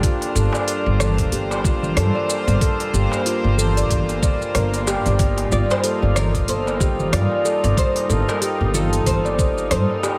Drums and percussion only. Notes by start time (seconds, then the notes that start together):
0.03 kick, open hi-hat, shaker
0.21 open hi-hat, darbuka ka
0.36 shaker
0.53 darbuka tek, shaker
0.68 open hi-hat, shaker
1.00 cross-stick, darbuka dum, shaker
1.18 kick, open hi-hat, shaker
1.32 open hi-hat, shaker
1.51 darbuka tek, shaker
1.64 kick, darbuka ka, shaker
1.83 darbuka dum, shaker
1.97 cross-stick, open hi-hat, darbuka tek, shaker
2.15 darbuka ka, darbuka tek
2.29 darbuka ka, shaker
2.48 open hi-hat, shaker
2.61 kick, open hi-hat, shaker
2.80 open hi-hat, darbuka ka, shaker
2.94 shaker
3.12 darbuka tek, shaker
3.26 open hi-hat, shaker
3.57 darbuka dum, shaker
3.77 open hi-hat, shaker
3.90 kick, open hi-hat, darbuka dum, shaker
4.09 open hi-hat, darbuka ka, shaker
4.22 kick, darbuka tek, shaker
4.41 darbuka tek, shaker
4.55 cross-stick, open hi-hat, shaker
4.73 open hi-hat, darbuka ka, shaker
4.87 darbuka tek, shaker
5.06 open hi-hat, shaker
5.19 kick, open hi-hat, shaker
5.37 open hi-hat, darbuka ka
5.52 shaker
5.70 darbuka tek, shaker
5.84 open hi-hat, shaker
6.16 cross-stick, darbuka dum, shaker
6.35 kick, open hi-hat, shaker
6.48 open hi-hat, shaker
6.67 darbuka tek, shaker
6.80 kick, darbuka ka, shaker
7.00 darbuka dum, shaker
7.12 cross-stick, open hi-hat, darbuka tek, shaker
7.31 darbuka ka, darbuka tek
7.45 darbuka ka, shaker
7.64 open hi-hat, shaker
7.77 kick, open hi-hat, shaker
7.96 open hi-hat, darbuka ka
8.10 shaker
8.29 darbuka tek, shaker
8.42 open hi-hat, shaker
8.74 darbuka dum, shaker
8.93 open hi-hat, shaker
9.06 kick, open hi-hat, darbuka dum, shaker
9.25 darbuka ka, shaker
9.39 kick, darbuka tek, shaker
9.58 darbuka tek, shaker
9.71 cross-stick, open hi-hat, shaker
9.90 darbuka ka
10.03 darbuka tek, shaker